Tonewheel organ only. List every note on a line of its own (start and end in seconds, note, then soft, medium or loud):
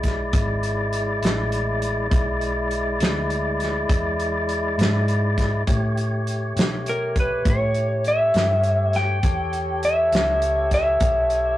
0.00 2.08 G#3 medium
0.00 2.08 E4 medium
0.00 2.08 D5 medium
2.10 5.63 G#3 medium
2.10 5.63 E4 medium
2.10 5.63 D5 medium
5.67 9.19 A3 medium
5.67 9.19 G4 medium
5.67 9.19 C#5 medium
9.23 11.58 G4 medium
9.23 11.58 A4 medium
9.23 11.58 C#5 medium